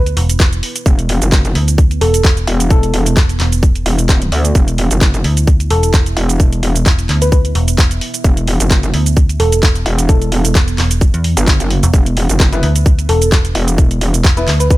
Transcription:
Already playing: D2 B3 E4 B4
0.06 closed hi-hat, shaker
0.17 E1, open hi-hat
0.29 closed hi-hat, shaker
0.40 E1, kick, clap, shaker
0.53 closed hi-hat, shaker
0.63 open hi-hat
0.76 closed hi-hat, shaker
0.86 E1, kick, shaker
0.99 closed hi-hat, shaker
1.09 open hi-hat
1.22 F#1, closed hi-hat, shaker
1.32 kick, clap, shaker
1.45 closed hi-hat, shaker
1.55 D2, open hi-hat
1.68 closed hi-hat, shaker
1.78 kick, shaker
1.91 closed hi-hat, shaker
2.01 E1 A4, open hi-hat
2.14 closed hi-hat, shaker
2.24 E1, kick, clap, shaker
2.37 closed hi-hat, shaker
2.47 E1, open hi-hat
2.60 closed hi-hat, shaker
2.70 A4, kick, shaker
2.83 closed hi-hat, shaker
2.94 E1, open hi-hat
3.06 closed hi-hat, shaker
3.17 E1, kick, clap, shaker
3.29 closed hi-hat, shaker
3.40 E1, clap, open hi-hat
3.52 closed hi-hat, shaker
3.63 kick, shaker
3.76 closed hi-hat, shaker
3.86 E1, open hi-hat
3.99 closed hi-hat, shaker
4.09 kick, clap, shaker
4.22 closed hi-hat, shaker
4.32 D2, open hi-hat
4.45 closed hi-hat, shaker
4.55 E1 E5, kick, shaker
4.68 closed hi-hat, shaker
4.78 open hi-hat
4.91 F#1, closed hi-hat, shaker
5.01 kick, clap, shaker
5.14 closed hi-hat, shaker
5.24 D2, open hi-hat
5.37 closed hi-hat, shaker
5.47 kick, shaker
5.60 closed hi-hat, shaker
5.70 E1 A4, open hi-hat
5.83 closed hi-hat, shaker
5.94 E1, kick, clap, shaker
6.06 closed hi-hat, shaker
6.17 E1, open hi-hat
6.29 closed hi-hat, shaker
6.40 kick, shaker
6.53 closed hi-hat, shaker
6.63 E1, open hi-hat
6.76 closed hi-hat, shaker
6.86 E1, kick, clap, shaker
6.99 closed hi-hat, shaker
7.09 D2, clap, open hi-hat
7.22 B4, closed hi-hat, shaker
7.32 B4, kick, shaker
7.45 closed hi-hat, shaker
7.55 E1, open hi-hat
7.68 closed hi-hat, shaker
7.78 E1, kick, clap, shaker
7.91 closed hi-hat, shaker
8.01 open hi-hat
8.14 closed hi-hat, shaker
8.24 E1, kick, shaker
8.37 closed hi-hat, shaker
8.47 open hi-hat
8.60 F#1, closed hi-hat, shaker
8.71 kick, clap, shaker
8.83 closed hi-hat, shaker
8.94 D2, open hi-hat
9.06 closed hi-hat, shaker
9.17 kick, shaker
9.29 closed hi-hat, shaker
9.40 E1 A4, open hi-hat
9.52 closed hi-hat, shaker
9.63 E1, kick, clap, shaker
9.75 closed hi-hat, shaker
9.86 E1, open hi-hat
9.99 closed hi-hat, shaker
10.09 A4, kick, shaker
10.22 closed hi-hat, shaker
10.32 E1, open hi-hat
10.45 closed hi-hat, shaker
10.55 E1, kick, clap, shaker
10.68 closed hi-hat, shaker
10.78 E1, clap, open hi-hat
10.91 closed hi-hat, shaker
11.01 kick, shaker
11.14 E2, closed hi-hat, shaker
11.24 open hi-hat
11.37 G1, closed hi-hat, shaker
11.47 kick, clap, shaker
11.60 F#1, closed hi-hat, shaker
11.71 open hi-hat
11.83 E1, closed hi-hat, shaker
11.94 E1 D4 B4, kick, shaker
12.06 closed hi-hat, shaker
12.17 open hi-hat
12.29 F#1, closed hi-hat, shaker
12.40 kick, clap, shaker
12.52 B3 E4 B4, closed hi-hat, shaker
12.63 D2, open hi-hat
12.76 closed hi-hat, shaker
12.86 kick, shaker
12.99 closed hi-hat, shaker
13.09 E1 A4, open hi-hat
13.22 closed hi-hat, shaker
13.32 E1, kick, clap, shaker
13.45 closed hi-hat, shaker
13.55 E1, open hi-hat
13.68 closed hi-hat, shaker
13.78 kick, shaker
13.91 closed hi-hat, shaker
14.01 E1, open hi-hat
14.14 closed hi-hat, shaker
14.24 E1, kick, clap, shaker
14.37 B3 E4 B4, closed hi-hat, shaker
14.47 D2, clap, open hi-hat
14.60 B4, closed hi-hat, shaker
14.71 B4, kick, shaker

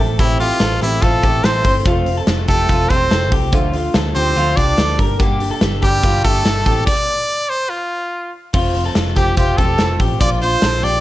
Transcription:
0.00 A1 A3 C4 E4 A4 E5
0.19 A2 E3 A3 C4 E4 G4 A4, kick, hi-hat pedal, open hi-hat
0.40 A3 C4 E4 F4 G4 A4, hi-hat pedal, open hi-hat
0.60 A1 A3 C4 E4 A4, snare, hi-hat pedal, open hi-hat
0.81 A1 A3 C4 E4 G4 A4, snare, hi-hat pedal, open hi-hat
1.02 A1 A2 E3 A3 C4 E4 F4 A4, kick, hi-hat pedal, open hi-hat
1.23 A1 A3 C4 E4 G4 A4, kick, hi-hat pedal, open hi-hat
1.44 A1 A3 C4 E4 A4 C5, snare, hi-hat pedal, open hi-hat
1.64 G1 A3 C4 E4 A4 C5, kick, hi-hat pedal, open hi-hat
1.85 F1 F2 C3 F3 A3 C4 F4 A4, kick, hi-hat pedal, open hi-hat
2.06 F3 A3 C4 A4, hi-hat pedal, open hi-hat
2.17 A4
2.27 F1 F3 A3 C4 A4, snare, hi-hat pedal, open hi-hat
2.48 F1 F3 A3 C4 G4 A4, kick, hi-hat pedal, open hi-hat
2.69 F1 F2 C3 F3 A3 C4 F4 A4, kick, hi-hat pedal, open hi-hat
2.89 E1 F3 A3 C4 G4 A4 C5, kick, hi-hat pedal, open hi-hat
3.10 F1 F3 A3 C4 A4, snare, hi-hat pedal, open hi-hat
3.31 C2 F3 A3 C4 G4 A4, kick, hi-hat pedal, open hi-hat
3.52 D2 D3 F3 A3 D4 F4 A4, kick, hi-hat pedal, open hi-hat
3.72 A3 D4 F4, hi-hat pedal, open hi-hat
3.94 D2 F3 A3 D4 F4 A4, snare, hi-hat pedal, open hi-hat
4.15 D2 A3 C4 D4 F4 G4 C5, hi-hat pedal, open hi-hat
4.35 D2 D3 F3 A3 D4 F4, hi-hat pedal, open hi-hat
4.56 C2 A3 D4 F4 G4 D5, kick, hi-hat pedal, open hi-hat
4.77 D2 F3 A3 D4 F4 A4, snare, hi-hat pedal, open hi-hat
4.98 G1 G3 A#3 D4 G4 A#4, kick, hi-hat pedal, open hi-hat
5.19 G2 D3 G3 A#3 D4 G4, kick, hi-hat pedal, open hi-hat
5.40 G3 A#3 D4 G4, hi-hat pedal, open hi-hat
5.51 A4
5.61 G1 G3 A#3 D4 G4, snare, hi-hat pedal, open hi-hat
5.82 G1 G3 A#3 D4 G4, kick, hi-hat pedal, open hi-hat
6.03 G1 G2 D3 G3 A#3 D4 F4 G4, kick, hi-hat pedal, open hi-hat
6.24 G1 G3 A3 A#3 D4 G4 A4, kick, hi-hat pedal, open hi-hat
6.45 G1 G3 A#3 D4 G4 A4, snare, hi-hat pedal, open hi-hat
6.66 A1 A3 C4 E4 G4 A4, kick, hi-hat pedal, open hi-hat
6.87 D5, kick, crash
7.49 C5
7.69 F4
8.53 F1 F2 C3 F3 A3 C4 F4, kick, crash
8.75 F3 A3 C4 F4, hi-hat pedal, open hi-hat
8.86 A4
8.95 F1 F3 A3 C4 F4, snare, hi-hat pedal, open hi-hat
9.15 F1 F3 A3 C4 F4 G4, kick, snare, hi-hat pedal, open hi-hat
9.37 F1 F2 C3 F3 A3 C4 F4 G4, kick, hi-hat pedal, open hi-hat
9.57 E1 F3 A3 C4 F4 G4 A4, kick, hi-hat pedal, open hi-hat
9.78 F1 F3 A3 C4 F4 A4, snare, hi-hat pedal, open hi-hat
10.00 A1 F3 A3 C4 F4 G4, kick, hi-hat pedal, open hi-hat
10.21 A#1 A#2 F3 A#3 D4 F4 D5, kick, hi-hat pedal, open hi-hat
10.41 A#3 D4 F4 C5, hi-hat pedal, open hi-hat
10.62 A#1 F3 A#3 D4 F4 A4, snare, hi-hat pedal, open hi-hat
10.83 A#1 A#3 D4 F4 G4 D5, hi-hat pedal, open hi-hat

